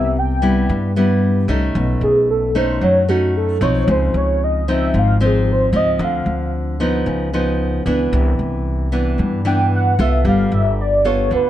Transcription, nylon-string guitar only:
Already playing: C3 G3 B3 E4
0.42 G3 B3 E4
0.70 G2
0.96 G3 B3 E4
1.49 A3 C#4 D#4
1.76 B2
2.55 A3 C#4 D#4
2.82 F#3
3.09 A3 C#4 D#4
3.61 F3 C4 D#4
3.88 C#3
4.68 F3 C4 D#4
4.94 G#2
5.21 F3 C4 D#4
5.73 F3 C4
6.00 D3
6.80 F3 B3 D#4
7.07 C#3
7.33 F3 B3 D#4
7.86 E3 B3 D4
8.14 C3
8.92 E3 B3 D4
9.18 G2
9.45 E3 B3 D4
9.99 B3 F4 A4
10.25 G3
11.05 B3 F4 A4
11.32 D3

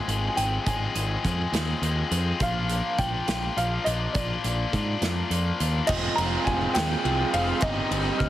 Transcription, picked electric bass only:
0.08 G#1
0.37 G#1
0.66 G#1
0.95 G#1
1.25 F2
1.52 D#2
1.82 D#2
2.11 F2
2.40 A#1
2.98 A#1
3.28 A#1
3.57 A#1
3.87 A#1
4.15 A#1
4.44 A#1
4.73 G#2
5.01 F2
5.30 F2
5.60 D#2
5.89 F1
6.18 F1
6.46 F1
6.76 D#2
7.05 C2
7.34 F1
7.62 G1
7.91 G1
8.20 D2

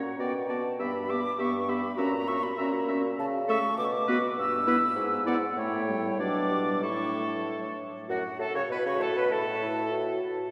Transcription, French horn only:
0.18 B3
0.49 B3
0.79 B3
1.09 B3
1.39 B3
1.68 B3
1.99 C#4
2.29 C#4
2.59 C#4
2.88 C#4
3.49 A3
4.08 B3
4.67 B3
5.27 B3
5.57 A3
5.88 G3
6.20 F#3
6.51 G3
6.83 A3
8.70 F#4
9.31 A4
9.62 E4
9.91 F#4

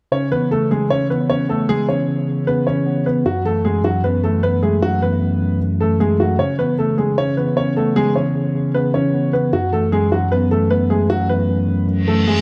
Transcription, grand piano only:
0.12 C#4 C#5
0.32 B3 B4
0.51 A3 A4
0.71 G#3 G#4
0.90 C#4 C#5
1.10 B3 B4
1.30 C#4 C#5
1.49 A3 A4
1.69 G#3 G#4
1.89 C#4 C#5
2.47 B3 B4
2.67 C#4 C#5
3.06 B3 B4
3.26 F#3 F#4
3.45 A3 A4
3.65 G#3 G#4
3.84 F#3 F#4
4.04 B3 B4
4.24 A3 A4
4.43 B3 B4
4.63 G#3 G#4
4.82 F#3 F#4
5.02 B3 B4
5.80 A3 A4
6.00 G#3 G#4
6.20 F#3 F#4
6.39 C#4 C#5
6.59 B3 B4
6.78 A3 A4
6.98 G#3 G#4
7.18 C#4 C#5
7.37 B3 B4
7.57 C#4 C#5
7.76 A3 A4
7.96 G#3 G#4
8.15 C#4 C#5
8.74 B3 B4
8.94 C#4 C#5
9.33 B3 B4
9.53 F#3 F#4
9.73 A3 A4
9.92 G#3 G#4
10.12 F#3 F#4
10.32 B3 B4
10.51 A3 A4
10.70 B3 B4
10.90 G#3 G#4
11.10 F#3 F#4
11.29 B3 B4
12.08 A3 A4
12.27 G#3 G#4

